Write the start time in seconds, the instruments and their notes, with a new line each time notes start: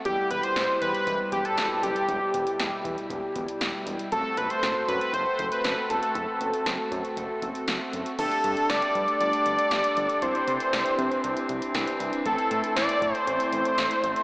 0.05 analog synth bass E1, analog polysynth B2 G3 E4 G4, analog synth lead G4, kick, closed hi-hat
0.31 analog synth bass E1, analog synth lead B4, closed hi-hat
0.43 analog synth lead C5, closed hi-hat
0.56 analog synth bass E1, snare, closed hi-hat
0.81 analog synth bass E2, analog synth lead B4, closed hi-hat
0.94 analog synth lead B4, closed hi-hat
1.07 analog synth bass E1, analog synth lead B4, kick, closed hi-hat
1.32 analog synth bass E1, analog synth lead G4, kick, closed hi-hat
1.45 analog synth lead A4, closed hi-hat
1.58 analog synth bass E1, snare, closed hi-hat
1.83 analog synth bass F#1, analog synth lead G4, closed hi-hat
1.96 closed hi-hat
2.09 analog synth bass E1, kick, closed hi-hat
2.34 analog synth bass E1, closed hi-hat
2.47 closed hi-hat
2.59 analog synth bass E1, snare, closed hi-hat
2.85 analog synth bass E2, kick, closed hi-hat
2.98 closed hi-hat
3.10 analog synth bass E1, kick, closed hi-hat
3.36 analog synth bass E1, kick, closed hi-hat
3.48 closed hi-hat
3.61 analog synth bass E1, snare, closed hi-hat
3.87 analog synth bass E1, closed hi-hat
3.99 closed hi-hat
4.12 analog synth bass F#1, analog polysynth A3 C4 F#4 A4, analog synth lead A4, kick, closed hi-hat
4.37 analog synth bass F#1, analog synth lead B4, closed hi-hat
4.50 analog synth lead C5, closed hi-hat
4.63 analog synth bass F#1, snare, closed hi-hat
4.88 analog synth bass F#2, analog synth lead B4, closed hi-hat
5.01 analog synth lead B4, closed hi-hat
5.13 analog synth bass F#1, analog synth lead C5, kick, closed hi-hat
5.39 analog synth bass F#1, analog synth lead C5, kick, closed hi-hat
5.52 analog synth lead B4, closed hi-hat
5.64 analog synth bass F#1, snare, closed hi-hat
5.90 analog synth bass E1, analog synth lead A4, closed hi-hat
6.03 closed hi-hat
6.15 analog synth bass F#1, kick, closed hi-hat
6.41 analog synth bass F#1, closed hi-hat
6.54 closed hi-hat
6.66 analog synth bass F#1, snare, closed hi-hat
6.92 analog synth bass F#2, kick, closed hi-hat
7.05 closed hi-hat
7.17 analog synth bass F#1, kick, closed hi-hat
7.42 analog synth bass F#1, kick, closed hi-hat
7.55 closed hi-hat
7.68 analog synth bass F#1, snare, closed hi-hat
7.93 analog synth bass F#1, closed hi-hat
8.06 closed hi-hat
8.19 analog synth bass G1, woodwind section G3 D4 A4, analog polysynth A3 D4 G4 A4, analog synth lead A4, kick, closed hi-hat, crash
8.32 closed hi-hat
8.44 analog synth bass G2, closed hi-hat
8.57 closed hi-hat
8.70 analog synth bass G1, analog synth lead D5, snare, closed hi-hat
8.82 closed hi-hat
8.95 analog synth bass G2, kick, closed hi-hat
9.08 closed hi-hat
9.20 analog synth bass G1, analog synth lead D5, closed hi-hat
9.33 closed hi-hat
9.46 analog synth bass G1, closed hi-hat
9.59 closed hi-hat
9.71 analog synth bass G1, snare, closed hi-hat
9.84 closed hi-hat
9.97 analog synth bass G1, kick, closed hi-hat
10.09 closed hi-hat
10.22 analog synth bass C2, woodwind section E3 C4, analog polysynth C4 D4 E4 G4, analog synth lead C5, kick, closed hi-hat
10.35 closed hi-hat
10.48 analog synth bass C3, closed hi-hat
10.60 closed hi-hat
10.73 analog synth bass C2, snare, closed hi-hat
10.86 closed hi-hat
10.98 analog synth bass C3, kick, closed hi-hat
11.11 closed hi-hat
11.24 analog synth bass C2, closed hi-hat
11.37 closed hi-hat
11.49 analog synth bass C2, kick, closed hi-hat
11.62 closed hi-hat
11.75 analog synth bass C2, snare, closed hi-hat
11.87 closed hi-hat
12.00 analog synth bass C2, closed hi-hat
12.13 closed hi-hat
12.26 analog synth bass A1, woodwind section A3, analog polysynth A3 C4 E4 A4, analog synth lead A4, kick, closed hi-hat
12.38 closed hi-hat
12.51 analog synth bass A2, closed hi-hat
12.64 closed hi-hat
12.76 analog synth bass A1, analog synth lead D5, snare, closed hi-hat
12.89 closed hi-hat
13.02 analog synth bass A2, kick, closed hi-hat
13.14 analog synth lead C5, closed hi-hat
13.27 analog synth bass A1, analog synth lead C5, closed hi-hat
13.40 closed hi-hat
13.53 analog synth bass A1, closed hi-hat
13.65 closed hi-hat
13.78 analog synth bass A1, snare, closed hi-hat
13.91 closed hi-hat
14.04 analog synth bass A1, kick, closed hi-hat
14.16 closed hi-hat